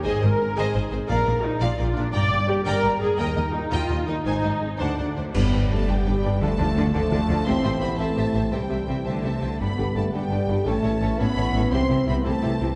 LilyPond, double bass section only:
\new Staff \with { instrumentName = "Double bass section" } { \clef bass \time 6/8 \key aes \lydian \tempo 4. = 113 aes,,8 aes,,8 r8 aes,,8 aes,,8 aes,,8 | bes,,8 bes,,8 r8 bes,,8 bes,,8 bes,,8 | g,,8 g,,8 r8 g,,8 g,,8 g,,8 | ees,8 ees,8 r8 ees,8 ees,8 ees,8 |
aes,,8 aes,,8 r8 d,8 d,8 d,8 | \key g \mixolydian g,,8 g,,8 g,,8 g,,8 g,,8 g,,8 | d,8 d,8 d,8 d,8 d,8 d,8 | a,,8 a,,8 a,,8 a,,8 a,,8 a,,8 |
c,8 c,8 c,8 c,8 c,8 c,8 | g,,8 g,,8 g,,8 g,,8 g,,8 g,,8 | a,,8 a,,8 a,,8 a,,8 a,,8 a,,8 | c,8 c,8 c,8 c,8 c,8 c,8 | }